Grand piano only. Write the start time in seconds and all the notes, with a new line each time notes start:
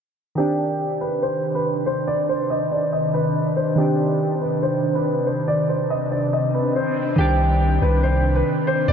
0.37 G4
1.01 B4
1.23 C5
1.55 B4
1.86 C5
2.07 D5
2.29 C5
2.50 D#5
2.71 D5
2.93 D#5
3.14 B4
3.56 C5
3.78 G4
4.41 B4
4.63 C5
4.95 B4
5.26 C5
5.48 D5
5.69 C5
5.90 D#5
6.12 D5
6.33 D#5
6.54 B4
6.76 C5
7.18 G4
7.82 B4
8.03 C5
8.36 B4
8.67 C5
8.88 D5